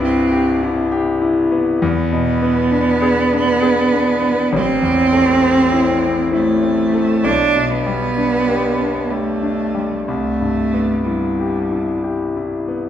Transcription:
Already playing: grand piano C2 G2 B4
0.02 cello C4, grand piano E4
0.32 grand piano G4
0.63 grand piano E4
0.92 grand piano G4
1.22 grand piano E4
1.52 grand piano B3
1.82 grand piano E2, cello B3
2.12 grand piano B2
2.42 grand piano B3
2.71 grand piano D4
3.02 grand piano G#4
3.33 grand piano D4
3.62 grand piano G#4
3.93 grand piano D4
4.22 grand piano B3
4.52 grand piano A1, cello C4
4.82 grand piano E2
5.13 grand piano A3
5.42 grand piano C4
5.73 grand piano E4
6.03 grand piano C4
6.33 cello A3, grand piano E4
6.63 grand piano C4
6.94 grand piano A3
7.24 grand piano B1, cello D4
7.56 grand piano B2
7.70 cello B3
7.86 grand piano G3
8.17 grand piano D4
8.48 grand piano G4
8.79 grand piano D4
9.10 cello A3, grand piano G4
9.43 grand piano D4
9.75 grand piano G3
10.07 grand piano C2, cello A3
10.41 grand piano G2
10.74 grand piano B3
11.04 cello G3, grand piano E4
11.39 grand piano G4
11.72 grand piano E4
12.04 grand piano G4
12.37 grand piano E4
12.68 grand piano B3

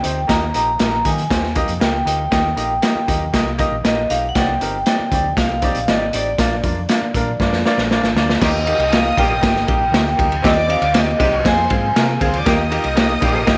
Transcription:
Already playing: vibraphone G5
0.03 fingered electric bass D2, upright piano C4 D#4 G4 C5, closed hi-hat
0.27 fingered electric bass D#2, upright piano A#3 D#4 G4 D#5, vibraphone A#5, kick, snare, closed hi-hat
0.54 fingered electric bass A#1, upright piano A#3 D#4 G4 D#5, vibraphone A#5, closed hi-hat
0.79 fingered electric bass A#1, upright piano A#3 D#4 G4 A#4, snare, closed hi-hat
1.05 fingered electric bass D#3, upright piano A#3 D#4 G4 D#5, vibraphone G#5, kick, closed hi-hat
1.18 closed hi-hat
1.30 fingered electric bass D#2, upright piano A#3 D#4 G4 C5, kick, snare, closed hi-hat
1.44 snare
1.55 upright piano A#3 D#4 G4 D#5, kick, closed hi-hat
1.68 fingered electric bass F2, closed hi-hat
1.80 fingered electric bass C#2, upright piano A#3 D#4 G4 A#4, vibraphone G5, snare, closed hi-hat
2.05 fingered electric bass D2, upright piano A#3 D#4 G4 D#5, vibraphone G5, closed hi-hat
2.31 fingered electric bass D#2, upright piano A#3 D#4 G4 D#5, kick, snare, closed hi-hat
2.56 fingered electric bass A#1, upright piano A#3 D#4 G4 D#5, closed hi-hat
2.82 upright piano A#3 D#4 G4 D#5, snare, closed hi-hat
2.95 muted fingered electric bass stroke
3.07 fingered electric bass D#2, upright piano A#3 D#4 G4 D#5, kick, closed hi-hat
3.33 fingered electric bass C2, upright piano A#3 D#4 G4 D#5, kick, snare, closed hi-hat
3.58 upright piano A#3 D#4 G4 D#5, kick, closed hi-hat
3.71 fingered electric bass A#1
3.84 fingered electric bass A#1, upright piano A#3 D#4 G4 D#5, vibraphone D#5, snare, closed hi-hat
4.10 fingered electric bass B1, upright piano A#3 D#4 G4 D#5, vibraphone F5, closed hi-hat
4.29 vibraphone F#5
4.35 fingered electric bass C2, upright piano C4 D#4 G4 D5, vibraphone G5, kick, snare, closed hi-hat
4.61 fingered electric bass G1, upright piano C4 D#4 G4 A#4, closed hi-hat
4.86 upright piano C4 D#4 G4 D5, vibraphone G5, snare, closed hi-hat
4.99 muted fingered electric bass stroke
5.12 fingered electric bass D2, upright piano C4 D#4 G4 D5, kick, closed hi-hat
5.37 fingered electric bass C2, upright piano C4 D#4 G4 F5, vibraphone F5, kick, snare, closed hi-hat
5.62 upright piano C4 D#4 G4 D5, kick, closed hi-hat
5.75 fingered electric bass A#1, closed hi-hat
5.88 fingered electric bass G#1, upright piano C4 D#4 G4 D5, vibraphone D#5, snare, closed hi-hat
6.13 fingered electric bass A1, upright piano C4 D#4 G4 D5, vibraphone D5, closed hi-hat
6.38 fingered electric bass A#1, upright piano A#3 D4 F4 D5, kick, snare, closed hi-hat
6.63 fingered electric bass F2, upright piano A#3 D4 F4 D5, kick, closed hi-hat
6.89 upright piano A#3 D4 F4 D5, snare, closed hi-hat
7.02 muted fingered electric bass stroke
7.14 fingered electric bass A#2, upright piano A#3 D4 F4 A#4, kick, closed hi-hat
7.40 fingered electric bass G2, upright piano A#3 D4 F4 D5, kick, snare
7.52 fingered electric bass F2, snare
7.65 upright piano A#3 D4 F4 D5, snare
7.77 fingered electric bass A#1, snare
7.91 upright piano A#3 D4 F4 D5, snare
8.03 fingered electric bass G#1, snare
8.14 fingered electric bass D2, upright piano A#3 D4 F4 D5, snare
8.29 snare
8.40 fingered electric bass D#2, horn section D#3 G3 A#3 G4, upright piano A#3 D#4 G4, string section D#5 D#6, vibraphone D#5, kick, snare, crash
8.66 upright piano A#3 D#4 G4, vibraphone D#5, ride
8.78 fingered electric bass C2, ride
8.91 upright piano A#3 D#4 G4, vibraphone F5, snare, ride
9.17 fingered electric bass A#1, horn section D#3 G3 A#3 G4, upright piano A#3 D#4 A#4, vibraphone G5, kick, ride
9.41 fingered electric bass G1, upright piano A#3 D#4 G4, kick, snare, ride
9.57 snare
9.66 fingered electric bass A#1, upright piano A#3 D#4 G4, vibraphone G5, kick, ride
9.92 fingered electric bass D2, upright piano A#3 D#4 G4, snare, ride
10.17 fingered electric bass D2, upright piano A#3 D#4 G4, kick, ride
10.32 ride
10.42 fingered electric bass D#2, horn section D#3 G3 C4 G4, upright piano C4 D#4 G4, string section D5 D6, vibraphone D#5, kick, snare, ride
10.67 upright piano C4 D#4 G4, vibraphone F5, ride
10.82 fingered electric bass D2, ride
10.93 upright piano C4 D#4 G4, vibraphone D#5, snare, ride
11.19 fingered electric bass C2, horn section C3 G3 G#3 G4, upright piano C4 D#4 G4, vibraphone D#5, kick, ride
11.44 fingered electric bass F2, upright piano C4 F4 G#4, string section C5 C6, vibraphone G#5, kick, snare, ride
11.70 fingered electric bass G#2, upright piano C4 F4 G#4, kick, ride
11.96 fingered electric bass C3, upright piano C4 F4 A#4, string section F4 F5, snare, ride
12.03 string section G4 G5
12.11 string section G#4 G#5
12.20 fingered electric bass D2, upright piano C4 F4 G#4, string section A#4 A#5, kick, ride
12.28 string section C5 C6
12.33 string section D5 D6, ride
12.45 fingered electric bass D#2, horn section D#3 G3 A#3 G4, upright piano A#3 D#4 G4, string section D#5 D#6, kick, snare, ride
12.70 upright piano A#3 D#4 G4, ride
12.84 fingered electric bass C2, ride
12.95 upright piano A#3 D#4 G4, snare, ride
13.20 fingered electric bass A#1, horn section D#3 G3 A#3 G4, upright piano A#3 D#4 G4, kick, ride
13.46 fingered electric bass G1, upright piano A#3 D#4 G4, kick, snare, ride

